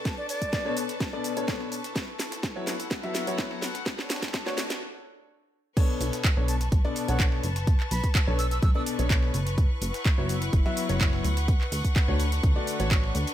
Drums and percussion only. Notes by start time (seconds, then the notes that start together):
0.05 kick, snare, closed hi-hat, shaker
0.29 open hi-hat, shaker
0.42 kick, closed hi-hat, shaker
0.53 kick, snare, closed hi-hat, shaker
0.77 closed hi-hat, open hi-hat, shaker
0.89 snare, closed hi-hat, shaker
1.00 kick, snare, closed hi-hat, shaker
1.24 closed hi-hat, open hi-hat, shaker
1.37 closed hi-hat, shaker
1.48 kick, snare, closed hi-hat, shaker
1.61 snare
1.72 closed hi-hat, open hi-hat, shaker
1.84 snare, closed hi-hat, shaker
1.96 kick, snare, closed hi-hat, shaker
2.19 snare, closed hi-hat, open hi-hat, shaker
2.32 snare, closed hi-hat, shaker
2.43 kick, snare, closed hi-hat, shaker
2.67 snare, closed hi-hat, open hi-hat, shaker
2.80 snare, closed hi-hat, shaker
2.91 kick, snare, closed hi-hat, shaker
3.03 closed hi-hat
3.15 snare, closed hi-hat, open hi-hat, shaker
3.27 closed hi-hat, shaker
3.38 kick, snare, closed hi-hat, shaker
3.51 snare
3.62 snare, closed hi-hat, open hi-hat, shaker
3.75 snare, closed hi-hat, shaker
3.86 kick, snare, closed hi-hat, shaker
3.99 snare
4.10 snare, closed hi-hat, open hi-hat, shaker
4.16 snare, closed hi-hat
4.22 kick, snare, closed hi-hat, shaker
4.28 snare, closed hi-hat
4.34 kick, snare, closed hi-hat, shaker
4.46 snare
4.58 snare, closed hi-hat, open hi-hat, shaker
4.70 snare, closed hi-hat, shaker
5.77 kick, closed hi-hat, crash, shaker
6.01 closed hi-hat, open hi-hat, shaker
6.13 snare, closed hi-hat, shaker
6.24 kick, snare, clap, closed hi-hat, shaker
6.48 closed hi-hat, open hi-hat, shaker
6.61 snare, closed hi-hat, shaker
6.72 kick, closed hi-hat, shaker
6.85 closed hi-hat
6.96 closed hi-hat, open hi-hat, shaker
7.08 closed hi-hat, shaker
7.20 kick, snare, clap, closed hi-hat, shaker
7.32 snare
7.43 closed hi-hat, open hi-hat, shaker
7.56 snare, closed hi-hat, shaker
7.67 kick, closed hi-hat, shaker
7.80 clap
7.91 open hi-hat, shaker
8.04 kick, closed hi-hat, shaker
8.15 kick, snare, clap, closed hi-hat, shaker
8.39 closed hi-hat, open hi-hat, shaker
8.51 snare, closed hi-hat, shaker
8.62 kick, closed hi-hat, shaker
8.86 closed hi-hat, open hi-hat, shaker
8.99 closed hi-hat, shaker
9.10 kick, snare, clap, closed hi-hat, shaker
9.23 snare
9.34 closed hi-hat, open hi-hat, shaker
9.46 snare, closed hi-hat, shaker
9.58 kick, closed hi-hat, shaker
9.82 closed hi-hat, open hi-hat, shaker
9.94 snare, closed hi-hat, shaker
10.05 kick, snare, clap, closed hi-hat, shaker
10.29 closed hi-hat, open hi-hat, shaker
10.42 snare, closed hi-hat, shaker
10.53 kick, closed hi-hat, shaker
10.66 closed hi-hat
10.77 closed hi-hat, open hi-hat, shaker
10.89 closed hi-hat, shaker
11.01 kick, snare, clap, closed hi-hat, shaker
11.13 snare
11.24 closed hi-hat, open hi-hat, shaker
11.37 snare, closed hi-hat, shaker
11.48 kick, closed hi-hat, shaker
11.61 clap
11.72 open hi-hat, shaker
11.85 kick, closed hi-hat, shaker
11.96 kick, snare, clap, closed hi-hat, shaker
12.20 closed hi-hat, open hi-hat, shaker
12.32 snare, closed hi-hat, shaker
12.43 kick, closed hi-hat, shaker
12.67 closed hi-hat, open hi-hat, shaker
12.80 closed hi-hat, shaker
12.91 kick, snare, clap, closed hi-hat, shaker
13.04 snare
13.15 closed hi-hat, open hi-hat, shaker
13.27 snare, closed hi-hat, shaker